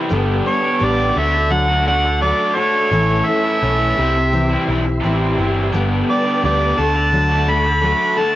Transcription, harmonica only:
0.47 0.86 C#5 medium
0.85 1.20 D5 medium
1.18 1.54 E5 loud
1.52 1.87 F#5 loud
1.87 2.20 F#5 loud
2.22 2.57 D5 medium
2.55 3.27 C#5 loud
3.26 4.67 E5 loud
6.10 6.42 D5 medium
6.45 6.82 D5 medium
6.80 7.52 A5 loud
7.50 8.20 B5 loud
8.19 8.36 A5 loud

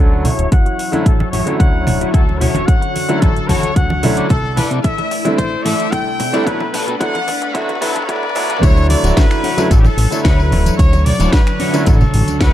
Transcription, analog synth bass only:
0.00 0.32 D2 medium
0.39 0.48 D1 medium
1.06 1.24 A1 medium
1.33 1.42 A1 medium
1.60 1.88 D2 medium
1.86 2.05 D1 loud
2.14 2.48 D2 medium
2.54 2.64 D1 medium
3.22 3.41 A1 medium
3.49 3.59 A1 loud
3.63 3.73 D2 soft
3.76 4.04 D2 medium
4.03 4.21 D1 loud
4.30 4.64 C2 medium
4.71 4.80 C3 medium
5.38 5.57 A1 loud
5.65 5.75 A2 loud
5.92 6.20 C2 medium
6.19 6.38 C3 loud
6.47 6.80 B1 loud
6.87 6.96 B2 medium
7.55 7.73 A1 medium
7.82 7.91 A2 loud
8.49 8.58 B2 loud
8.63 8.96 D2 medium
9.04 9.12 D1 medium
9.71 9.89 A1 loud
9.98 10.07 A1 loud
10.25 10.53 D2 medium
10.52 10.70 D1 loud
10.79 11.13 D2 loud
11.20 11.29 D1 medium
11.87 12.05 A1 medium
12.14 12.24 A1 loud
12.28 12.39 D2 soft
12.41 12.53 D2 loud

